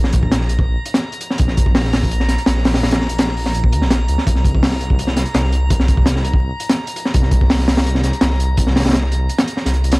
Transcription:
Already playing: A#1 A#5
0.04 snare
0.13 kick, closed hi-hat
0.23 A#1, kick
0.31 snare, closed hi-hat
0.41 snare
0.49 closed hi-hat
0.59 kick
0.67 A#1
0.85 closed hi-hat
0.94 snare, closed hi-hat
1.12 closed hi-hat
1.21 closed hi-hat
1.30 snare
1.38 A#1, kick, closed hi-hat
1.48 snare
1.57 kick, closed hi-hat
1.66 A#1, kick
1.75 snare, open hi-hat
1.85 snare
1.93 snare, open hi-hat
2.03 kick
2.11 closed hi-hat
2.20 snare
2.28 snare, closed hi-hat
2.38 closed hi-hat
2.46 A#1, snare, closed hi-hat
2.57 snare
2.65 snare, open hi-hat
2.74 snare, open hi-hat
2.83 A#1, snare, open hi-hat
2.91 snare, closed hi-hat
3.01 snare
3.09 A#1, closed hi-hat
3.19 snare, closed hi-hat
3.28 snare
3.37 open hi-hat
3.46 snare
3.54 A#1, closed hi-hat
3.64 kick
3.72 D#2, closed hi-hat
3.82 A#1, snare
3.90 snare, closed hi-hat
4.08 C#2, closed hi-hat
4.18 snare
4.27 C2, kick, closed hi-hat
4.35 snare
4.44 kick, closed hi-hat
4.55 C2, kick
4.63 snare, open hi-hat
4.72 snare
4.81 closed hi-hat
4.90 kick
4.99 closed hi-hat
5.07 snare
5.17 snare, closed hi-hat
5.26 closed hi-hat
5.34 C2, snare, closed hi-hat
5.44 snare
5.52 closed hi-hat
5.70 C2, kick, closed hi-hat
5.80 snare
5.88 kick, closed hi-hat
5.97 C2, kick
6.06 snare, closed hi-hat
6.16 snare
6.24 closed hi-hat
6.33 kick
6.42 C2
6.60 closed hi-hat
6.69 snare, closed hi-hat
6.87 closed hi-hat
6.96 closed hi-hat
7.05 snare
7.14 C2, kick, closed hi-hat
7.22 snare
7.31 kick, closed hi-hat
7.41 C2, kick
7.50 snare, open hi-hat
7.59 snare
7.68 snare, open hi-hat
7.77 snare, open hi-hat
7.87 closed hi-hat
7.95 snare
8.04 snare, closed hi-hat
8.13 closed hi-hat
8.21 C2, snare, closed hi-hat
8.30 snare
8.40 closed hi-hat
8.57 C2, kick, closed hi-hat
8.67 snare
8.76 snare, open hi-hat
8.80 snare, open hi-hat
8.85 C2, snare, open hi-hat
8.89 snare, open hi-hat
8.93 snare, closed hi-hat
9.03 snare
9.12 closed hi-hat
9.29 closed hi-hat
9.38 snare, closed hi-hat
9.47 closed hi-hat
9.57 snare
9.66 C2, snare, closed hi-hat
9.74 closed hi-hat
9.84 closed hi-hat
9.92 snare, closed hi-hat

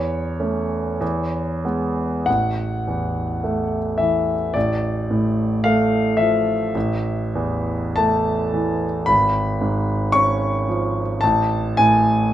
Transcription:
Already playing: E2 C#5
0.40 A3 C#4
1.01 E2
1.65 G#3 B3
2.26 A1 F#5
2.87 E2
3.44 A3
3.98 E3 E5
4.54 A1 D5
5.11 A2
5.64 A3 F5
6.17 F3 E5
6.75 A1
7.35 E2
7.96 A3 A5
8.54 E3
9.06 G#1 B5
9.61 G#2
10.12 C#4 C#6
10.68 F3
11.21 A1 A5
11.77 A2 G#5

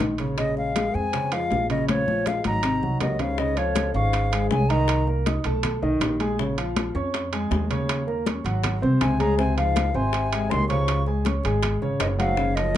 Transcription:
Already playing: D#3 D#4
0.00 A#1, high bongo, low bongo, high conga
0.18 C#3 C#4, high bongo, high conga, high timbale
0.38 C#3 G#3 C#4 D#5, high bongo, high conga, high timbale
0.57 G#3 F5, high bongo, high conga
0.75 G#3 G#4, high bongo, high conga, high timbale
0.94 F2 C4 G#5, high bongo, high conga
1.13 C#3 C#4, high bongo, high conga, high timbale
1.32 F3 G#3 F4 F5, high conga, high timbale
1.51 A#1, high bongo, low bongo, high conga, low timbale
1.70 C#3 F#3 C#4 D#5, high bongo, high conga, high timbale
1.89 F3 C#5, high bongo, high conga, high timbale
2.07 F3 F4, high bongo, high conga
2.26 G#3 F5, high bongo, high conga, high timbale
2.44 G#1 F#3 D#4 F#4 A#5, high bongo, high conga, high timbale
2.63 C3 C4, high bongo, high timbale
2.82 C2 F#3 F#4, low conga
3.01 C#2 F#2 D#5, high bongo, low bongo, low conga, high timbale, low timbale
3.19 G#2 C#3 C#4 F5, high bongo, low conga, high timbale
3.38 G#2 C#3 C#4 C#5 D#5, high bongo, high conga
3.57 F2 F3 F4 C#5 F5, high conga, high timbale
3.75 high bongo, high conga, high timbale
3.94 G#1 G#2 C#4 C#5 F5 C#6, high bongo
4.13 high bongo, high conga, high timbale
4.32 G#3 G#4 G#5, high bongo, high conga, high timbale
4.51 C2 C#3 G#5, high bongo, low bongo, high conga
4.69 D#3 D#4 D#5 A#5, high bongo, high timbale
4.88 high bongo, high conga, high timbale
5.07 A#3 A#4 A#5, high bongo, high conga
5.26 D#4 D#5 D#6, high bongo, high conga, high timbale
5.44 B1 A3 A4 A5, high bongo, high conga, high timbale
5.63 high bongo, high conga, low conga, high timbale
5.82 B1 D#3 D#4 D#5, high bongo, high conga
6.00 A#1, high bongo, low bongo, high conga, high timbale, low timbale
6.20 G#3 G#4 G#5, high conga, high timbale
6.39 C#3 C#4 C#5, high bongo, high conga
6.58 F3 F4 F5, high conga, high timbale
6.76 high bongo, high conga, high timbale
6.95 F2 C#4 C#5 C#6, high bongo
7.14 high bongo, high conga, high timbale
7.32 G#3 G#4 G#5, high bongo, high conga, high timbale
7.51 D#2, high bongo, low bongo, high conga, low timbale
7.70 C#3 C#4 C#5, high bongo, high conga, high timbale
7.89 high bongo, high conga, high timbale
8.07 A#3 A#4 A#5, high bongo, high conga
8.26 C#4 C#5 C#6, high bongo, high conga, high timbale
8.44 G#1 F#3 F#4 F#5, high bongo, high conga, high timbale
8.64 high bongo, high conga, low conga, high timbale
8.82 C2 C3 C4 C5, high bongo, high conga, low conga
9.01 C#2 C3 G#5, high bongo, low bongo, high conga, high timbale
9.19 C#3 G#3 G#4 G#5 A#5, high conga, high timbale
9.36 C3 C4 C5 G#5, high bongo, high conga
9.56 G#2 F3 F4 F5, high conga, high timbale
9.76 high bongo, high conga, high timbale
9.93 G#1 C3 C4 C5 G#5 C6, high bongo
10.13 high bongo, high conga, high timbale
10.32 G#3 G#4 G#5, high bongo, high conga, high timbale
10.50 C#2 D#3 C6, high bongo, low bongo, high conga, low timbale
10.69 C#3 F3 C#4 C#5 C#6, high bongo, high timbale
10.88 high bongo, high conga, high timbale
11.06 G#3 G#4 G#5, high bongo, high conga
11.25 C#4 C#5 C#6, high bongo, high conga, high timbale
11.44 G#1 G#3 G#4 G#5, high bongo, high conga, high timbale
11.63 high bongo, high conga, low conga, high timbale
11.82 G#1 C#3 C#4 C#5, high bongo, high conga
12.00 F#1 G#2 D#5, high bongo, low bongo, high conga, high timbale
12.18 G#2 F#3 F#4 F5 F#5, high conga, high timbale
12.37 C#3 C#4 C#5, high bongo, high conga
12.56 F#2 F3 F4 D#5 F5, high conga, high timbale

